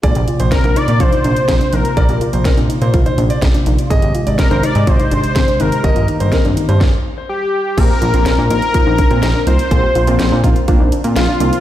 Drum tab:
CC |----------------|----------------|----------------|----------------|
HH |xxxxxxxxxxxxxxxx|xxxxxxxxxxxxxxxx|xxxxxxxxxxxxxxxx|xxxxxxxx--------|
SD |----o-------o---|----o-------o---|----o-------o---|----o---o-------|
BD |o---o---o---o---|o---o---o---o---|o---o---o---o---|o---o---o-------|

CC |x---------------|----------------|
HH |x-xxx-xxx-xxx-xx|x-xxx-xxx-xxx-xx|
SD |----o-------o---|----o-------o---|
BD |o-------o-o-----|o-----o-o-------|